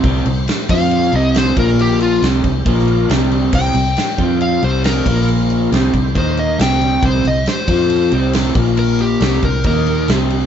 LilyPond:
<<
  \new Staff \with { instrumentName = "Electric slide guitar" } { \time 4/4 \key c \major \tempo 4 = 137 r4. f''4 ees''8 c''8 bes'8 | g'8 f'8 r2. | g''2 f''8 c''8 bes'4 | r2 c''8 ees''8 g''4 |
c''8 ees''8 c''2 r4 | bes'8 g'4 bes'8 bes'4 r4 | }
  \new Staff \with { instrumentName = "Tonewheel organ" } { \time 4/4 \key c \major <c' e' g' c''>4. <f c' f' c''>4 <g c' e' g'>4 <f bes f' bes'>8~ | <f bes f' bes'>4 <g c' e' g'>4 <f bes f' bes'>4 <g c' e' g'>4 | <g c' e' g'>4. <f c' f' c''>4 <g c' e' g'>4 <f bes f' bes'>8~ | <f bes f' bes'>4 <c' e' g' c''>4 <bes ees' bes' ees''>4 <c' e' g' c''>4~ |
<c' e' g' c''>4. <f c' f' c''>4 <g c' e' g'>4 <f bes f' bes'>8~ | <f bes f' bes'>4 <c' e' g' c''>4 <bes ees' bes' ees''>4 <c' e' g' c''>4 | }
  \new Staff \with { instrumentName = "Overdriven electric guitar" } { \clef bass \time 4/4 \key c \major <c g c'>8 <c g>8 r8 <f c' f'>4 <c g c'>4 <bes, f bes>8~ | <bes, f bes>4 <c g c'>8 <c g>8 <bes, f bes>4 <c g c'>4 | <c g c'>8 <c g>8 r8 <f c' f'>4 <c g c'>4 <bes, f bes>8~ | <bes, f bes>4 <c g c'>8 <c g>8 <ees bes ees'>4 <c g c'>4 |
<c g c'>8 <c g>8 r8 <f c' f'>4 <c g c'>4 <bes, f bes>8~ | <bes, f bes>4 <c g c'>8 <c g>8 <ees bes ees'>4 <c g c'>4 | }
  \new Staff \with { instrumentName = "Fingered electric bass" } { \clef bass \time 4/4 \key c \major c,8 c,8 r8 f,4 c,4 bes,,8~ | bes,,4 c,8 c,8 bes,,4 c,4 | c,8 c,8 r8 f,4 c,4 bes,,8~ | bes,,4 c,8 c,8 ees,4 c,4 |
c,8 c,8 r8 f,4 c,4 bes,,8~ | bes,,4 c,8 c,8 ees,4 c,4 | }
  \new DrumStaff \with { instrumentName = "Drums" } \drummode { \time 4/4 <cymc bd>8 cymc8 <cymc sn>8 <cymc bd>8 cymc8 cymc8 <cymc sn>8 <cymc bd>8 | cymc8 cymc8 <cymc sn>8 <cymc bd>8 <cymc bd>16 sn16 cymc8 <cymc sn>8 cymc8 | <cymc bd>8 cymc8 <cymc sn>8 <cymc bd>8 cymc8 cymc8 <cymc sn>8 <cymc bd>8 | cymc8 cymc8 <cymc sn>8 <cymc bd>8 <cymc bd>8 cymc8 <cymc sn>8 cymc8 |
<cymc bd>8 cymc8 <cymc sn>8 <cymc bd>8 cymc8 cymc8 <cymc sn>8 <cymc bd>8 | cymc8 cymc8 <cymc sn>8 <cymc bd>8 <cymc bd>8 cymc8 <cymc sn>8 cymc8 | }
>>